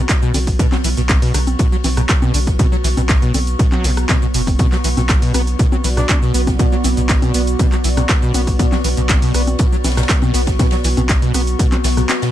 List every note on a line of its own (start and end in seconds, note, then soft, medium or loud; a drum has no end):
0.00 12.31 B3 medium
0.00 12.31 F#4 medium
0.00 12.31 C#6 medium
0.09 kick loud
0.09 snare loud
0.09 clap loud
0.09 closed hi-hat medium
0.09 ride medium
0.09 cabasa soft
0.22 0.32 B2 loud
0.22 ride soft
0.22 cabasa soft
0.34 0.56 B1 loud
0.34 0.39 D3 medium
0.34 open hi-hat loud
0.34 ride medium
0.34 high conga medium
0.34 cabasa medium
0.47 kick medium
0.47 open hi-hat medium
0.47 ride soft
0.47 cabasa soft
0.59 0.66 B2 medium
0.59 kick loud
0.59 closed hi-hat medium
0.59 ride medium
0.59 cabasa soft
0.72 0.76 F#3 medium
0.72 snare medium
0.72 clap soft
0.72 high conga medium
0.72 cabasa soft
0.84 0.95 B1 loud
0.84 0.89 E3 medium
0.84 open hi-hat loud
0.84 ride medium
0.84 cabasa medium
0.97 1.18 B1 medium
0.97 1.01 B2 loud
0.97 snare soft
0.97 closed hi-hat medium
0.97 cabasa soft
1.09 kick loud
1.09 snare loud
1.09 clap loud
1.09 closed hi-hat medium
1.09 ride medium
1.09 high conga medium
1.09 cabasa soft
1.22 1.32 B2 loud
1.22 open hi-hat medium
1.22 cabasa soft
1.34 1.56 B1 medium
1.34 1.39 D3 medium
1.34 cross-stick medium
1.34 open hi-hat loud
1.34 ride medium
1.34 cabasa medium
1.47 closed hi-hat medium
1.47 high conga medium
1.47 cabasa soft
1.59 1.66 B2 medium
1.59 kick loud
1.59 closed hi-hat medium
1.59 ride medium
1.59 cabasa soft
1.72 1.76 F#3 medium
1.72 cabasa soft
1.84 2.06 B1 loud
1.84 1.89 E3 medium
1.84 open hi-hat loud
1.84 ride medium
1.84 high conga medium
1.84 cabasa medium
1.97 2.01 B2 loud
1.97 cross-stick medium
1.97 closed hi-hat medium
1.97 cabasa soft
2.09 kick loud
2.09 snare loud
2.09 clap loud
2.09 closed hi-hat medium
2.09 ride medium
2.09 cabasa soft
2.22 2.32 B2 loud
2.22 ride soft
2.22 high conga medium
2.22 cabasa soft
2.34 2.56 B1 loud
2.34 2.39 D3 medium
2.34 open hi-hat loud
2.34 ride medium
2.34 cabasa medium
2.47 kick medium
2.47 snare soft
2.47 closed hi-hat soft
2.47 cabasa soft
2.59 2.66 B2 medium
2.59 kick loud
2.59 closed hi-hat medium
2.59 ride medium
2.59 high conga medium
2.59 cabasa soft
2.72 2.76 F#3 medium
2.72 cabasa soft
2.84 2.95 B1 loud
2.84 2.89 E3 medium
2.84 open hi-hat loud
2.84 ride medium
2.84 cabasa medium
2.97 3.18 B1 medium
2.97 3.01 B2 loud
2.97 closed hi-hat medium
2.97 high conga medium
2.97 cabasa soft
3.09 kick loud
3.09 snare loud
3.09 clap loud
3.09 closed hi-hat medium
3.09 ride medium
3.09 cabasa soft
3.22 3.32 B2 loud
3.22 closed hi-hat soft
3.22 cabasa soft
3.34 3.56 B1 medium
3.34 3.39 D3 medium
3.34 open hi-hat loud
3.34 ride medium
3.34 high conga medium
3.34 cabasa medium
3.47 closed hi-hat soft
3.47 cabasa soft
3.59 3.66 B2 medium
3.59 kick loud
3.59 closed hi-hat medium
3.59 ride medium
3.59 cabasa soft
3.72 3.86 F#3 medium
3.72 clap soft
3.72 high conga medium
3.72 cabasa soft
3.84 4.06 B1 loud
3.84 3.91 B2 medium
3.84 open hi-hat loud
3.84 ride medium
3.84 cabasa medium
3.97 cross-stick medium
3.97 closed hi-hat medium
3.97 ride soft
3.97 cabasa soft
4.09 4.16 B2 medium
4.09 kick loud
4.09 snare loud
4.09 clap loud
4.09 closed hi-hat medium
4.09 ride medium
4.09 high conga medium
4.09 cabasa soft
4.22 4.26 B2 medium
4.22 ride soft
4.22 cabasa soft
4.34 4.56 F#1 loud
4.34 4.41 B2 medium
4.34 open hi-hat loud
4.34 ride medium
4.34 cabasa medium
4.47 kick medium
4.47 open hi-hat medium
4.47 ride soft
4.47 high conga medium
4.47 cabasa soft
4.59 4.66 B2 medium
4.59 12.31 B3 medium
4.59 12.31 F#4 medium
4.59 12.31 D5 medium
4.59 kick loud
4.59 closed hi-hat medium
4.59 ride medium
4.59 high conga medium
4.59 cabasa soft
4.72 4.76 F#3 medium
4.72 snare medium
4.72 clap soft
4.72 cabasa soft
4.84 4.95 B1 loud
4.84 4.89 E3 medium
4.84 open hi-hat loud
4.84 ride medium
4.84 cabasa medium
4.97 5.18 B1 medium
4.97 5.01 B2 loud
4.97 snare soft
4.97 closed hi-hat medium
4.97 high conga medium
4.97 cabasa soft
5.09 kick loud
5.09 snare loud
5.09 clap loud
5.09 closed hi-hat medium
5.09 ride medium
5.09 cabasa soft
5.22 5.32 B2 loud
5.22 open hi-hat medium
5.22 cabasa soft
5.34 5.56 B1 medium
5.34 5.41 B3 medium
5.34 cross-stick medium
5.34 open hi-hat loud
5.34 ride medium
5.34 high conga medium
5.34 cabasa medium
5.47 closed hi-hat medium
5.47 cabasa soft
5.59 5.66 B2 medium
5.59 kick loud
5.59 closed hi-hat medium
5.59 ride medium
5.59 cabasa soft
5.72 5.76 F#3 medium
5.72 high conga medium
5.72 cabasa soft
5.84 6.06 B1 medium
5.84 5.89 E3 medium
5.84 open hi-hat loud
5.84 ride medium
5.84 cabasa medium
5.97 6.01 B2 loud
5.97 6.05 D4 medium
5.97 cross-stick medium
5.97 snare medium
5.97 closed hi-hat medium
5.97 cabasa soft
6.09 6.18 D4 medium
6.09 kick loud
6.09 clap loud
6.09 closed hi-hat medium
6.09 ride medium
6.09 high conga medium
6.09 cabasa soft
6.22 6.32 B2 loud
6.22 snare soft
6.22 cabasa soft
6.34 6.56 B1 loud
6.34 6.41 B3 medium
6.34 open hi-hat loud
6.34 ride medium
6.34 cabasa medium
6.47 kick medium
6.47 snare medium
6.47 closed hi-hat medium
6.47 high conga medium
6.47 cabasa soft
6.59 6.66 B2 medium
6.59 kick loud
6.59 closed hi-hat medium
6.59 ride medium
6.59 cabasa soft
6.72 6.76 F#3 medium
6.72 cabasa soft
6.84 6.95 B1 loud
6.84 6.89 E3 medium
6.84 open hi-hat loud
6.84 ride medium
6.84 high conga medium
6.84 cabasa medium
6.97 7.18 B1 medium
6.97 7.01 B2 loud
6.97 closed hi-hat medium
6.97 cabasa soft
7.09 kick loud
7.09 snare loud
7.09 clap loud
7.09 closed hi-hat medium
7.09 ride medium
7.09 cabasa soft
7.22 7.32 B2 loud
7.22 closed hi-hat soft
7.22 high conga medium
7.22 cabasa soft
7.34 7.56 B1 medium
7.34 7.41 B3 medium
7.34 open hi-hat loud
7.34 ride medium
7.34 cabasa medium
7.47 closed hi-hat medium
7.47 cabasa soft
7.59 7.66 B2 medium
7.59 kick loud
7.59 closed hi-hat medium
7.59 ride medium
7.59 high conga medium
7.59 cabasa soft
7.72 7.76 F#3 medium
7.72 clap soft
7.72 cabasa soft
7.84 8.06 B1 medium
7.84 7.89 E3 medium
7.84 open hi-hat loud
7.84 ride medium
7.84 cabasa medium
7.97 8.01 B2 loud
7.97 cross-stick medium
7.97 closed hi-hat medium
7.97 ride soft
7.97 high conga medium
7.97 cabasa soft
8.09 kick loud
8.09 snare loud
8.09 clap loud
8.09 closed hi-hat medium
8.09 ride medium
8.09 cabasa soft
8.22 8.32 B2 loud
8.22 ride soft
8.22 cabasa soft
8.34 8.56 B1 loud
8.34 8.41 B3 medium
8.34 open hi-hat loud
8.34 ride medium
8.34 high conga medium
8.34 cabasa medium
8.47 kick medium
8.47 open hi-hat medium
8.47 ride soft
8.47 cabasa soft
8.59 8.66 B2 medium
8.59 kick loud
8.59 closed hi-hat medium
8.59 ride medium
8.59 cabasa soft
8.72 8.76 F#3 medium
8.72 snare medium
8.72 clap soft
8.72 high conga medium
8.72 cabasa soft
8.84 8.95 B1 loud
8.84 8.89 E3 medium
8.84 open hi-hat loud
8.84 ride medium
8.84 cabasa medium
8.97 9.18 B1 medium
8.97 9.01 B2 loud
8.97 closed hi-hat medium
8.97 cabasa soft
9.09 kick loud
9.09 snare loud
9.09 clap loud
9.09 closed hi-hat medium
9.09 ride medium
9.09 high conga medium
9.09 cabasa soft
9.22 9.32 B2 loud
9.22 open hi-hat medium
9.22 cabasa soft
9.34 9.56 B1 medium
9.34 9.42 B3 medium
9.34 cross-stick medium
9.34 open hi-hat loud
9.34 ride medium
9.34 cabasa medium
9.47 closed hi-hat medium
9.47 high conga medium
9.47 cabasa soft
9.59 9.66 B2 medium
9.59 kick loud
9.59 closed hi-hat medium
9.59 ride medium
9.59 cabasa soft
9.72 9.76 F#3 medium
9.72 cabasa soft
9.84 10.06 B1 loud
9.84 9.89 E3 medium
9.84 snare medium
9.84 open hi-hat loud
9.84 ride medium
9.84 high conga medium
9.84 cabasa medium
9.90 snare medium
9.90 ride medium
9.97 10.01 B2 loud
9.97 cross-stick medium
9.97 snare medium
9.97 closed hi-hat medium
9.97 ride medium
9.97 cabasa soft
10.03 snare loud
10.03 ride medium
10.09 kick loud
10.09 snare loud
10.09 clap loud
10.09 closed hi-hat medium
10.09 ride medium
10.09 cabasa soft
10.22 10.32 B2 loud
10.22 ride soft
10.22 high conga medium
10.22 cabasa soft
10.34 10.56 B1 loud
10.34 10.41 B3 medium
10.34 snare loud
10.34 open hi-hat loud
10.34 ride medium
10.34 cabasa medium
10.47 kick medium
10.47 snare loud
10.47 closed hi-hat medium
10.47 ride medium
10.47 cabasa soft
10.59 10.66 B2 medium
10.59 kick loud
10.59 snare loud
10.59 closed hi-hat medium
10.59 ride medium
10.59 high conga medium
10.59 cabasa soft
10.71 10.76 F#3 medium
10.71 snare loud
10.71 closed hi-hat soft
10.71 ride medium
10.71 cabasa soft
10.84 10.95 B1 loud
10.84 10.89 E3 medium
10.84 open hi-hat loud
10.84 ride medium
10.84 cabasa medium
10.97 11.18 B1 medium
10.97 11.01 B2 loud
10.97 closed hi-hat medium
10.97 high conga medium
10.97 cabasa soft
11.09 kick loud
11.09 snare loud
11.09 clap loud
11.09 closed hi-hat medium
11.09 ride medium
11.09 cabasa soft
11.22 11.32 B2 loud
11.22 closed hi-hat soft
11.22 cabasa soft
11.34 11.56 B1 medium
11.34 11.41 B3 medium
11.34 cross-stick medium
11.34 open hi-hat loud
11.34 ride medium
11.34 high conga medium
11.34 cabasa medium
11.47 closed hi-hat medium
11.47 cabasa soft
11.59 11.66 B2 medium
11.59 kick loud
11.59 closed hi-hat medium
11.59 ride medium
11.59 cabasa soft
11.72 11.76 F#3 medium
11.72 clap soft
11.72 closed hi-hat soft
11.72 high conga medium
11.72 cabasa soft
11.84 12.06 B1 medium
11.84 11.89 E3 medium
11.84 snare loud
11.84 open hi-hat loud
11.84 ride medium
11.84 cabasa medium
11.97 12.01 B2 loud
11.97 cross-stick medium
11.97 closed hi-hat medium
11.97 cabasa soft
12.09 snare loud
12.09 clap loud
12.09 closed hi-hat medium
12.09 ride medium
12.09 high conga medium
12.09 cabasa soft
12.22 12.31 B2 loud
12.22 snare loud
12.22 closed hi-hat soft
12.22 ride medium
12.22 cabasa soft